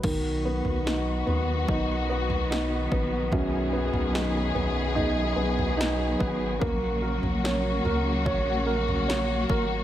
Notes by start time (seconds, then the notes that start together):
0.03 B1 D#3 F#3 B3 F#4, kick, floor tom, crash
0.45 B3
0.65 B1, floor tom
0.86 D#4, snare
1.26 D#2 B3, floor tom
1.68 B1 D#4, kick, floor tom
2.09 B3
2.30 floor tom
2.50 D#4, snare
2.92 A#1 B3, kick
3.32 B1 F#2 G#4, kick, floor tom
3.73 B3
3.93 B1, floor tom
4.13 D#4, snare
4.55 B1 B3, floor tom
4.95 D#4, floor tom
5.36 B1 B3
5.59 floor tom
5.77 D#4, snare
6.19 G#1 B3, kick
6.60 A#1 C#3 A#3 F#4, kick, floor tom
7.02 A#4
7.22 A#1, floor tom
7.44 C#5, snare
7.84 C#2 A#4, floor tom
8.26 A#1 C#5, kick, floor tom
8.66 A#4
8.88 floor tom
9.08 C#5, snare
9.49 G#1 A#4, kick